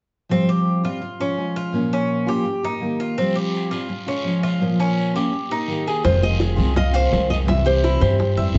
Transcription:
0.29 F3 G3 C4 F4
0.49 G4
0.84 G3 C4 F4
1.01 muted steel-string acoustic guitar stroke
1.20 F3 G#3 C#4 F4
1.37 F3 G#3 C#4 F4
1.56 F4
1.72 A#2 F3 A#3 C#4 F4
1.93 C#4
2.27 F3 A#3 C#4 F4 G4
2.45 muted steel-string acoustic guitar stroke
2.63 A#3 D#4 G4
2.80 D#3 A#3 D#4 G4
3.00 F4
3.18 F3 G3 C4 F4, long guiro
3.35 G4
3.54 short guiro
3.71 G3 C4 F4, short guiro
3.89 muted steel-string acoustic guitar stroke, long guiro
4.06 F3 G#3 C#4 F4
4.24 F3 G#3 C#4 F4, short guiro
4.43 F4, short guiro
4.60 A#2 F3 A#3 C#4 F4, long guiro
4.80 C#4
4.98 short guiro
5.14 F3 A#3 C#4 F4 G4, short guiro
5.32 muted steel-string acoustic guitar stroke, long guiro
5.50 A#3 D#4 G4
5.67 D#3 A#3 D#4 G4, short guiro
5.87 G#4, short guiro
6.03 F1 C3 D#3 G#3 C4 F4 C5, high bongo, long guiro
6.22 D#5, high bongo
6.40 G#4, high bongo, short guiro
6.56 C2 D#3 G#3 C4 F4
6.60 short guiro
6.74 D#5 F5, muted steel-string acoustic guitar stroke, high bongo, long guiro
6.91 D#3 G#3 C4 F4 C5 F5, high bongo
7.10 C2 D#3 G#3 C4 F4, high bongo, low bongo, short guiro
7.30 D#5, high bongo, short guiro
7.45 C3 E3 G3 C4 E4 E5, high bongo, long guiro
7.66 G4 C5, high bongo
7.84 E4, high bongo, short guiro
7.99 G2 E3 G3 C4 E4 G4 C5, short guiro
8.18 muted steel-string acoustic guitar stroke, high bongo, long guiro
8.36 F2 E3 G3 C4 E4 E5, high bongo
8.54 G2, high bongo, low bongo

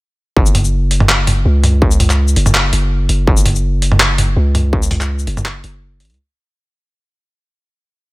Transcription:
0.37 F#1, kick
0.46 shaker
0.55 closed hi-hat, mid tom
0.64 shaker
0.91 closed hi-hat
1.00 mid tom
1.09 clap
1.27 closed hi-hat, mid tom
1.45 C#2
1.64 closed hi-hat, mid tom
1.82 kick
1.91 shaker
2.00 closed hi-hat, mid tom
2.10 clap, shaker
2.28 shaker
2.36 F#1, closed hi-hat
2.46 mid tom, shaker
2.55 clap
2.73 F#1, closed hi-hat
3.09 F#1, closed hi-hat
3.27 F#1, kick
3.37 shaker
3.46 closed hi-hat, mid tom
3.55 shaker
3.82 closed hi-hat
3.92 mid tom
4.00 clap
4.18 closed hi-hat, mid tom
4.36 C#2
4.55 closed hi-hat, mid tom
4.73 kick
4.82 shaker
4.91 closed hi-hat, mid tom
5.01 clap, shaker
5.19 shaker
5.27 F#1, closed hi-hat
5.37 mid tom, shaker
5.45 clap
5.64 F#1, closed hi-hat
6.00 A1, closed hi-hat
6.05 closed hi-hat
6.10 C#2, closed hi-hat
6.14 closed hi-hat

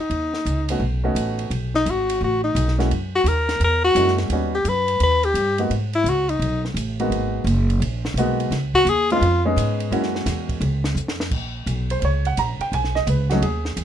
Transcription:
0.00 D#4
0.10 D#2, ride
0.34 snare
0.45 C#2, hi-hat pedal, ride
0.69 A3 B3 C#4 D#4 F#4, ride
0.80 B1
1.04 A3 B3 C#4 D#4 F#4
1.15 A1, hi-hat pedal, ride
1.39 ride
1.50 B1, ride
1.74 D#4, snare
1.86 G#1, hi-hat pedal, ride
1.90 F#4
2.10 ride
2.21 A1 F#4
2.44 D#4
2.55 B1, hi-hat pedal, ride
2.68 snare
2.78 G#3 A#3 C#4 E4 F#4, snare, ride
2.91 F#2, ride
3.15 F#4
3.24 D#2 A#4, hi-hat pedal, ride
3.49 snare, ride
3.60 E2, ride
3.64 A#4
3.84 F#4
3.95 F#2 G#3 A#3 C#4 E4 F#4, hi-hat pedal, ride
4.08 snare
4.18 snare, ride
4.29 D#2 G3 B3 C#4 D#4 F#4, ride
4.55 G4
4.65 F#2 B4, hi-hat pedal, ride
4.88 ride
5.00 D#2 B4, ride
5.23 G4, ride
5.34 G2, hi-hat pedal, ride
5.58 G#3 A#3 B3 D#4 F#4, ride
5.70 G#2, ride
5.93 E4, ride
6.04 C#2, hi-hat pedal, ride
6.09 F#4
6.29 D#4, ride
6.39 B1, ride
6.65 snare
6.74 A1, hi-hat pedal, ride
7.00 G#3 A#3 B3 D#4 F#4, ride
7.10 G#1, ride
7.44 F#1, hi-hat pedal, ride
7.70 ride
7.80 A#1, ride
8.05 snare
8.14 B1 A#3, hi-hat pedal, ride
8.18 G#3 B3 D#4 F#4
8.40 ride
8.51 C#2, snare, ride
8.74 F#4, kick
8.85 D#2, hi-hat pedal, ride
8.89 G#4
9.10 G#3 B3 C#4 D#4 F4, ride
9.21 F2, ride
9.45 G#3 B3 C#4 D#4 G#4
9.56 G#2, hi-hat pedal, ride
9.80 ride
9.91 F#2 G#3 A#3 C#4 E4 F#4, ride
10.03 snare
10.15 snare
10.26 E2, snare, hi-hat pedal, ride
10.49 kick, ride
10.61 C#2, ride
10.84 snare
10.95 F2, hi-hat pedal
11.08 snare
11.20 snare
11.31 A#1, kick, crash
11.66 B1, hi-hat pedal, ride
11.90 C5, ride
12.00 C#2 C5, ride
12.05 C#5
12.25 F#5, ride
12.37 A#1 A#5, hi-hat pedal, ride
12.60 G5, muted upright bass stroke, ride
12.72 B1 G#5, ride
12.84 snare
12.95 D#5, snare
13.07 C#2 B4, hi-hat pedal, ride
13.30 F#3 A3 C#4 D#4 F#4, snare, ride
13.42 D#2 G#4, ride
13.65 snare
13.77 E2, hi-hat pedal, ride

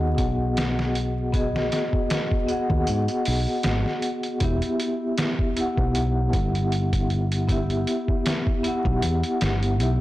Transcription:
Already playing: D#2 B3 F#4 G#4 D#5 F#5
0.18 B1, kick, closed hi-hat
0.57 snare, closed hi-hat
0.79 snare
0.95 closed hi-hat
1.32 B3 F#4 G#4 D#5, kick, closed hi-hat
1.56 snare
1.72 snare, closed hi-hat
1.93 kick
2.10 snare, closed hi-hat
2.31 kick
2.47 B3 F#4 G#4, closed hi-hat
2.51 F#5
2.70 D#2, kick
2.87 G#2, closed hi-hat
3.08 closed hi-hat
3.25 B1, open hi-hat
3.63 G#1, snare, closed hi-hat
3.86 snare
4.02 closed hi-hat
4.23 closed hi-hat
4.40 E1 B3 E4 G4, kick, closed hi-hat
4.45 E5
4.62 closed hi-hat
4.80 closed hi-hat
5.18 snare, closed hi-hat
5.39 kick
5.56 B3 E4 G4 F#5, closed hi-hat
5.77 B1, kick
5.95 closed hi-hat
6.33 G1, kick, closed hi-hat
6.55 closed hi-hat
6.72 closed hi-hat
6.93 kick, closed hi-hat
7.10 closed hi-hat
7.32 closed hi-hat
7.48 B3 E4 G4, kick, closed hi-hat
7.52 E5
7.70 closed hi-hat
7.87 closed hi-hat
8.08 kick
8.26 snare, closed hi-hat
8.47 kick
8.63 B3 E4 G4, closed hi-hat
8.68 F#5
8.85 B1, kick
9.02 E2, closed hi-hat
9.23 closed hi-hat
9.41 G1, snare, closed hi-hat
9.63 closed hi-hat
9.80 B1 B3 E4 G4 E5, closed hi-hat

